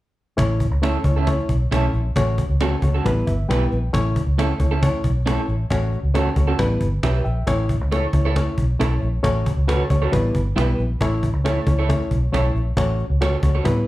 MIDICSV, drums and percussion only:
0, 0, Header, 1, 2, 480
1, 0, Start_track
1, 0, Tempo, 442478
1, 413, Time_signature, 4, 2, 24, 8
1, 15051, End_track
2, 0, Start_track
2, 0, Title_t, "Cajon"
2, 411, Note_on_c, 9, 36, 107
2, 421, Note_on_c, 9, 38, 104
2, 519, Note_off_c, 9, 36, 0
2, 530, Note_off_c, 9, 38, 0
2, 653, Note_on_c, 9, 36, 85
2, 762, Note_off_c, 9, 36, 0
2, 904, Note_on_c, 9, 38, 94
2, 1013, Note_off_c, 9, 38, 0
2, 1131, Note_on_c, 9, 36, 84
2, 1239, Note_off_c, 9, 36, 0
2, 1378, Note_on_c, 9, 38, 91
2, 1382, Note_on_c, 9, 36, 83
2, 1487, Note_off_c, 9, 38, 0
2, 1490, Note_off_c, 9, 36, 0
2, 1514, Note_on_c, 9, 38, 34
2, 1618, Note_on_c, 9, 36, 77
2, 1623, Note_off_c, 9, 38, 0
2, 1726, Note_off_c, 9, 36, 0
2, 1869, Note_on_c, 9, 38, 102
2, 1978, Note_off_c, 9, 38, 0
2, 2097, Note_on_c, 9, 38, 38
2, 2206, Note_off_c, 9, 38, 0
2, 2341, Note_on_c, 9, 36, 109
2, 2349, Note_on_c, 9, 38, 109
2, 2450, Note_off_c, 9, 36, 0
2, 2458, Note_off_c, 9, 38, 0
2, 2584, Note_on_c, 9, 36, 82
2, 2692, Note_off_c, 9, 36, 0
2, 2827, Note_on_c, 9, 38, 89
2, 2936, Note_off_c, 9, 38, 0
2, 3062, Note_on_c, 9, 36, 91
2, 3170, Note_off_c, 9, 36, 0
2, 3316, Note_on_c, 9, 36, 89
2, 3319, Note_on_c, 9, 38, 98
2, 3424, Note_off_c, 9, 36, 0
2, 3427, Note_off_c, 9, 38, 0
2, 3448, Note_on_c, 9, 38, 36
2, 3551, Note_on_c, 9, 36, 85
2, 3556, Note_off_c, 9, 38, 0
2, 3660, Note_off_c, 9, 36, 0
2, 3804, Note_on_c, 9, 38, 102
2, 3913, Note_off_c, 9, 38, 0
2, 4030, Note_on_c, 9, 38, 40
2, 4138, Note_off_c, 9, 38, 0
2, 4270, Note_on_c, 9, 36, 99
2, 4278, Note_on_c, 9, 38, 103
2, 4379, Note_off_c, 9, 36, 0
2, 4387, Note_off_c, 9, 38, 0
2, 4513, Note_on_c, 9, 36, 86
2, 4621, Note_off_c, 9, 36, 0
2, 4762, Note_on_c, 9, 38, 98
2, 4871, Note_off_c, 9, 38, 0
2, 4987, Note_on_c, 9, 36, 87
2, 5096, Note_off_c, 9, 36, 0
2, 5236, Note_on_c, 9, 36, 80
2, 5236, Note_on_c, 9, 38, 97
2, 5344, Note_off_c, 9, 38, 0
2, 5345, Note_off_c, 9, 36, 0
2, 5364, Note_on_c, 9, 38, 35
2, 5469, Note_on_c, 9, 36, 87
2, 5472, Note_off_c, 9, 38, 0
2, 5577, Note_off_c, 9, 36, 0
2, 5719, Note_on_c, 9, 38, 108
2, 5827, Note_off_c, 9, 38, 0
2, 5950, Note_on_c, 9, 38, 37
2, 6058, Note_off_c, 9, 38, 0
2, 6188, Note_on_c, 9, 36, 103
2, 6200, Note_on_c, 9, 38, 103
2, 6296, Note_off_c, 9, 36, 0
2, 6309, Note_off_c, 9, 38, 0
2, 6429, Note_on_c, 9, 38, 31
2, 6538, Note_off_c, 9, 38, 0
2, 6673, Note_on_c, 9, 38, 96
2, 6782, Note_off_c, 9, 38, 0
2, 6902, Note_on_c, 9, 36, 87
2, 7010, Note_off_c, 9, 36, 0
2, 7149, Note_on_c, 9, 38, 100
2, 7151, Note_on_c, 9, 36, 82
2, 7257, Note_off_c, 9, 38, 0
2, 7259, Note_off_c, 9, 36, 0
2, 7271, Note_on_c, 9, 38, 34
2, 7380, Note_off_c, 9, 38, 0
2, 7385, Note_on_c, 9, 36, 77
2, 7493, Note_off_c, 9, 36, 0
2, 7629, Note_on_c, 9, 38, 111
2, 7737, Note_off_c, 9, 38, 0
2, 7864, Note_on_c, 9, 38, 37
2, 7973, Note_off_c, 9, 38, 0
2, 8105, Note_on_c, 9, 36, 107
2, 8109, Note_on_c, 9, 38, 107
2, 8213, Note_off_c, 9, 36, 0
2, 8218, Note_off_c, 9, 38, 0
2, 8345, Note_on_c, 9, 36, 87
2, 8454, Note_off_c, 9, 36, 0
2, 8595, Note_on_c, 9, 38, 89
2, 8704, Note_off_c, 9, 38, 0
2, 8822, Note_on_c, 9, 36, 92
2, 8930, Note_off_c, 9, 36, 0
2, 9070, Note_on_c, 9, 38, 99
2, 9073, Note_on_c, 9, 36, 76
2, 9179, Note_off_c, 9, 38, 0
2, 9181, Note_off_c, 9, 36, 0
2, 9197, Note_on_c, 9, 38, 37
2, 9305, Note_off_c, 9, 38, 0
2, 9305, Note_on_c, 9, 36, 83
2, 9414, Note_off_c, 9, 36, 0
2, 9556, Note_on_c, 9, 38, 102
2, 9665, Note_off_c, 9, 38, 0
2, 9787, Note_on_c, 9, 38, 36
2, 9895, Note_off_c, 9, 38, 0
2, 10023, Note_on_c, 9, 36, 111
2, 10026, Note_on_c, 9, 38, 106
2, 10131, Note_off_c, 9, 36, 0
2, 10135, Note_off_c, 9, 38, 0
2, 10265, Note_on_c, 9, 36, 89
2, 10374, Note_off_c, 9, 36, 0
2, 10510, Note_on_c, 9, 38, 105
2, 10618, Note_off_c, 9, 38, 0
2, 10740, Note_on_c, 9, 36, 88
2, 10849, Note_off_c, 9, 36, 0
2, 10989, Note_on_c, 9, 38, 94
2, 10990, Note_on_c, 9, 36, 84
2, 11097, Note_off_c, 9, 38, 0
2, 11098, Note_off_c, 9, 36, 0
2, 11112, Note_on_c, 9, 38, 37
2, 11220, Note_off_c, 9, 38, 0
2, 11223, Note_on_c, 9, 36, 84
2, 11331, Note_off_c, 9, 36, 0
2, 11475, Note_on_c, 9, 38, 104
2, 11583, Note_off_c, 9, 38, 0
2, 11706, Note_on_c, 9, 38, 36
2, 11814, Note_off_c, 9, 38, 0
2, 11940, Note_on_c, 9, 36, 104
2, 11951, Note_on_c, 9, 38, 105
2, 12048, Note_off_c, 9, 36, 0
2, 12060, Note_off_c, 9, 38, 0
2, 12180, Note_on_c, 9, 36, 84
2, 12289, Note_off_c, 9, 36, 0
2, 12428, Note_on_c, 9, 38, 98
2, 12537, Note_off_c, 9, 38, 0
2, 12655, Note_on_c, 9, 36, 92
2, 12764, Note_off_c, 9, 36, 0
2, 12905, Note_on_c, 9, 36, 90
2, 12907, Note_on_c, 9, 38, 93
2, 13013, Note_off_c, 9, 36, 0
2, 13015, Note_off_c, 9, 38, 0
2, 13033, Note_on_c, 9, 38, 33
2, 13137, Note_on_c, 9, 36, 77
2, 13141, Note_off_c, 9, 38, 0
2, 13246, Note_off_c, 9, 36, 0
2, 13390, Note_on_c, 9, 38, 106
2, 13498, Note_off_c, 9, 38, 0
2, 13622, Note_on_c, 9, 38, 40
2, 13730, Note_off_c, 9, 38, 0
2, 13853, Note_on_c, 9, 36, 120
2, 13864, Note_on_c, 9, 38, 104
2, 13961, Note_off_c, 9, 36, 0
2, 13973, Note_off_c, 9, 38, 0
2, 14094, Note_on_c, 9, 38, 33
2, 14202, Note_off_c, 9, 38, 0
2, 14339, Note_on_c, 9, 38, 94
2, 14447, Note_off_c, 9, 38, 0
2, 14567, Note_on_c, 9, 36, 96
2, 14675, Note_off_c, 9, 36, 0
2, 14810, Note_on_c, 9, 38, 95
2, 14815, Note_on_c, 9, 36, 83
2, 14919, Note_off_c, 9, 38, 0
2, 14924, Note_off_c, 9, 36, 0
2, 14936, Note_on_c, 9, 38, 36
2, 15044, Note_off_c, 9, 38, 0
2, 15051, End_track
0, 0, End_of_file